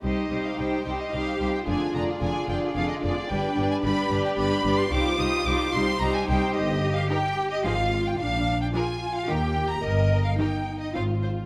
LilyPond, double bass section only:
\new Staff \with { instrumentName = "Double bass section" } { \clef bass \time 3/4 \key c \minor \tempo 4 = 110 c,8 c,8 c,8 c,8 c,8 c,8 | f,,8 f,,8 f,,8 f,,8 f,,8 f,,8 | g,,8 g,,8 g,,8 g,,8 g,,8 g,,8 | c,8 c,8 c,8 c,8 c,8 c,8 |
\key ees \major g,,4 r4 aes,,4 | bes,,4 r4 ees,4 | g,,4 r4 aes,,4 | }